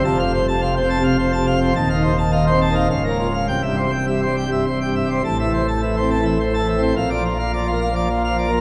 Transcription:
<<
  \new Staff \with { instrumentName = "Pipe organ" } { \time 3/4 \key f \major \tempo 4 = 105 a''16 f''16 c''16 a''16 f''16 c''16 a''16 f''16 c''16 a''16 f''16 c''16 | a''16 f''16 c''16 a''16 f''16 c''16 a''16 f''16 f''16 bes'16 f'16 f''16 | g''16 e''16 c''16 g''16 e''16 c''16 g''16 e''16 c''16 g''16 e''16 c''16 | a''16 e''16 c''16 a''16 e''16 c''16 a''16 e''16 c''16 a''16 e''16 c''16 |
f''16 d''16 f'16 f''16 d''16 f'16 f''16 d''16 f'16 f''16 d''16 f'16 | }
  \new Staff \with { instrumentName = "Pipe organ" } { \clef bass \time 3/4 \key f \major << { \tuplet 3/2 { f,8 c8 r8 c8 c'8 c8 r8 c8 c'8 } | \tuplet 3/2 { ees,8 ees8 r8 ees8 c'8 ees8 des,8 bes8 r8 } | \tuplet 3/2 { c,8 g,8 r8 g,8 g8 g,8 r8 g,8 g8 } | \tuplet 3/2 { a,8 e8 r8 e8 c'8 e8 r8 e8 c'8 } |
\tuplet 3/2 { bes,8 f8 r8 f8 bes8 f8 r8 f8 bes8 } | } \\ { f,,2. | ees,,2 des,,4 | c,,2. | a,,2. |
bes,,2. | } >> }
>>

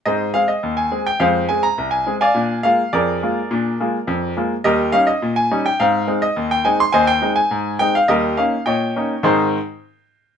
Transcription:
<<
  \new Staff \with { instrumentName = "Grand piano" } { \time 2/4 \key aes \major \tempo 4 = 104 <aes' c'' ees''>8 f''16 ees''8 aes''8 g''16 | <aes' c'' f''>8 aes''16 bes''8 aes''8 <d'' f'' aes''>16~ | <d'' f'' aes''>8 f''8 <aes' bes' d''>4~ | <aes' bes' d''>4. r8 |
<g' bes' ees''>8 f''16 ees''8 aes''8 g''16 | f''8. ees''8 g''16 aes''16 c'''16 | <c'' ees'' aes''>16 g''8 aes''8. g''16 f''16 | <g' bes' ees''>8 f''8 <des'' ees'' g''>4 |
<aes, ees c' ees' aes' c'' c'''>8 r4. | }
  \new Staff \with { instrumentName = "Grand piano" } { \time 2/4 \key aes \major <aes, c'>8 <aes c' aes'>8 ees,8 <aes c' aes'>8 | <f, aes>8 <aes c' aes'>8 c,8 <aes c' aes'>8 | <bes, d'>8 <aes bes f'>8 f,8 <aes bes f'>8 | <bes, d'>8 <aes bes f'>8 f,8 <aes bes f'>8 |
<ees, g>8 <g des' ees'>8 bes,8 <g des' ees'>8 | <aes, c'>8 <aes c' ees'>8 ees,8 <aes c' ees'>8 | ees,8 <aes c' ees'>8 aes,8 <aes c' ees'>8 | <ees, g>8 <bes des' ees'>8 bes,8 <bes des' ees'>8 |
r2 | }
>>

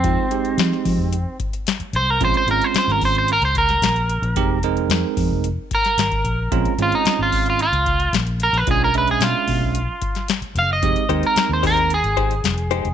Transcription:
<<
  \new Staff \with { instrumentName = "Clean electric guitar" } { \time 4/4 \key f \minor \tempo 4 = 111 c'2~ c'8 r4 c''16 bes'16 | c''16 c''16 bes'16 c''16 c''16 bes'16 c''16 c''16 bes'16 c''16 bes'4.~ | bes'8 r2 bes'4.~ | bes'8 f'16 ees'8 f'8 f'16 f'4 r8 bes'16 b'16 |
gis'16 bes'16 b'16 gis'16 f'2 r8 f''16 ees''16~ | ees''8. bes'8 c''16 bes'8 aes'2 | }
  \new Staff \with { instrumentName = "Clean electric guitar" } { \time 4/4 \key f \minor r1 | r1 | r1 | r1 |
r1 | r8 <aes ees' g' c''>8 r8 <aes ees' g' c''>8 r8 <aes ees' g' c''>8 r8 <aes ees' g' c''>8 | }
  \new Staff \with { instrumentName = "Tine electric piano" } { \time 4/4 \key f \minor <aes c' ees' f'>8 <aes c' ees' g'>4. r2 | <aes c' des' f'>8 <aes c' des' f'>4. r2 | <aes c' ees' g'>8 <aes c' ees' bes'>4. r2 | <aes c' des' f'>8 <aes c' des' f'>4. r2 |
<gis des' d' f'>8 <gis des' d' e''>4. r2 | <aes c' ees' g'>8 <aes c' ees' bes'>4. r2 | }
  \new Staff \with { instrumentName = "Fingered electric bass" } { \clef bass \time 4/4 \key f \minor f,16 r8. f16 r16 f16 f,8 r4 r16 c,8 | bes,,16 r16 aes,,16 r8 aes,,4 des,8. bes,,8. bes,,16 | f,,4 f,16 r16 f,16 f,,8 r8. aes,,8 bes,,8 | bes,,16 r16 aes,,16 r8 aes,,4 des,8. bes,,8. bes,,16 |
b,,4 b,16 r16 b,16 b,,8 r4 r16 ges,,8 | f,,16 r16 ees,16 r8 ees,4 aes,,8. f,,8. f,,16 | }
  \new DrumStaff \with { instrumentName = "Drums" } \drummode { \time 4/4 <hh bd>8 hh16 hh16 <hh sn>16 sn16 <hho bd>8 hh8 <hh bd>16 hh16 <hh sn>16 hh16 hh8 | <hh bd>16 hh16 hh16 hh16 <hh sn>16 sn16 <hho bd>16 hh16 hh16 hh16 <hh bd>16 <hh sn>16 <hh sn>16 hh16 hh16 hh16 | <hh bd>8 hh16 hh16 <hh sn>8 <hho bd>8 hh8 <hh bd>16 <hh sn>16 <hh sn>16 <hh bd>16 hh8 | <hh bd>16 hh16 hh16 hh16 <hh sn>8 <hho bd>16 hh16 hh16 hh16 <hh bd>16 hh16 <hh sn>16 hh16 hh16 hh16 |
<hh bd>8 hh16 hh16 <hh sn>8 <hho bd>8 hh8 <hh bd>16 <hh sn>16 <hh sn>16 hh16 hh8 | <hh bd>16 hh16 hh16 hh16 <hh sn>8 <hho bd>8 hh16 hh16 <hh bd>16 hh16 <hh sn>16 hh16 hh16 hh16 | }
>>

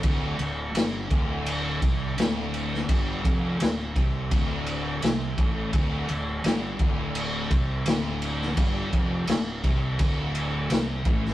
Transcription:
<<
  \new Staff \with { instrumentName = "Distorted electric guitar" } { \clef bass \time 4/4 \key d \minor \tempo 4 = 84 d,8 d,8 g,8 d,4 c8 d,4 | g,8 f,8 d,8 c8 d,4 c8 a,8 | d,8 d,8 g,8 d,4 c8 d,4 | g,8 f,8 d,8 c8 d,4 c8 a,8 | }
  \new Staff \with { instrumentName = "Distorted electric guitar" } { \clef bass \time 4/4 \key d \minor d,8 d,8 g,8 d,4 c8 d,4 | g,8 f,8 d,8 c8 d,4 c8 a,8 | d,8 d,8 g,8 d,4 c8 d,4 | g,8 f,8 d,8 c8 d,4 c8 a,8 | }
  \new Staff \with { instrumentName = "Fingered electric bass" } { \clef bass \time 4/4 \key d \minor d,,8 d,,8 g,,8 d,,4 c,8 d,,4 | g,,8 f,,8 d,,8 c,8 d,,4 c,8 a,,8 | d,,8 d,,8 g,,8 d,,4 c,8 d,,4 | g,,8 f,,8 d,,8 c,8 r4 c,8 a,,8 | }
  \new DrumStaff \with { instrumentName = "Drums" } \drummode { \time 4/4 <cymc bd>8 cymc8 <cymc sn>8 <cymc bd>8 cymc8 <cymc bd>8 <cymc sn>8 cymc16 sn16 | <cymc bd>8 <cymc bd>8 <cymc sn>8 <cymc bd>8 <cymc bd>8 cymc8 <cymc sn>8 <cymc bd>8 | <cymc bd>8 cymc8 <cymc sn>8 <cymc bd>8 cymc8 <cymc bd>8 <cymc sn>8 cymc16 sn16 | <cymc bd>8 <cymc bd>8 <cymc sn>8 <cymc bd>8 <cymc bd>8 cymc8 <cymc sn>8 <cymc bd>16 sn16 | }
>>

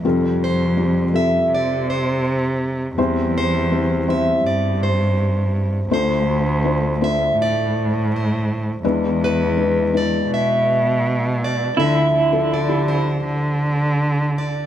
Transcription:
<<
  \new Staff \with { instrumentName = "Steel-string acoustic guitar" } { \time 4/4 \key d \dorian \tempo 4 = 82 r8 c''4 e''8 d''8 c''4 r8 | r8 c''4 e''8 d''8 c''4 r8 | c''4. e''8 d''4 c''8. r16 | r8 b'4 d''8 e''4. d''8 |
e''4 d''8 c''4. r8 d''8 | }
  \new Staff \with { instrumentName = "Clean electric guitar" } { \time 4/4 \key d \dorian r1 | r1 | r1 | r1 |
e'2 r2 | }
  \new Staff \with { instrumentName = "Felt piano" } { \time 4/4 \key d \dorian <g c' f' a'>8. r16 <g c' f' g'>16 r16 <g c' f' a'>4. r4 | <g c' e' c''>8. r16 <g c' e' c''>16 r16 <g c' e' c''>4. r4 | <a d' f' c''>8. r16 <a d' f' c''>16 r16 <a d' f' c''>4. r4 | <gis d' e' b'>8. r16 <gis d' e' b'>16 r16 <gis d' e' b'>4. r4 |
<f d' e' a'>8 r16 <f d' e' a'>16 r16 <f d' e' g'>4. r4 r16 | }
  \new Staff \with { instrumentName = "Felt piano" } { \clef bass \time 4/4 \key d \dorian <f,, f,>1 | <e, e>1 | <d, d>1 | <e, e>1 |
<d, d>1 | }
  \new Staff \with { instrumentName = "Cello" } { \clef bass \time 4/4 \key d \dorian f,2 c2 | e,2 g,2 | d,2 a,2 | e,2 b,2 |
d8 d4. d2 | }
>>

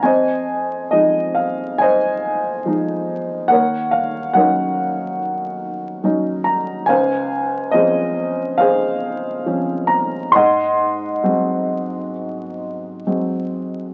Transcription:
<<
  \new Staff \with { instrumentName = "Upright piano" } { \time 4/4 \key f \phrygian \tempo 4 = 69 << { aes''4 ees''8 f''8 aes''2 | ges''8 f''8 ges''2 r8 bes''8 | aes''4 ees''4 f''4. bes''8 | c'''2. r4 | } \\ { <c'' ees''>2 <c'' ees''>2 | <bes' des''>4 <bes' des''>2 r4 | <c'' f''>4 <aes' c''>4 <aes' c''>2 | <ees'' ges''>2. r4 | } >> }
  \new Staff \with { instrumentName = "Upright piano" } { \clef bass \time 4/4 \key f \phrygian f,4 <f aes ees'>4 r4 <f aes ees'>4 | ees,4 <ges des' ees'>4 r4 <ges des' ees'>4 | des,4 <f c' des'>4 r4 <f c' des'>4 | aes,4 <ges aes c'>4 r4 <ges aes c'>4 | }
>>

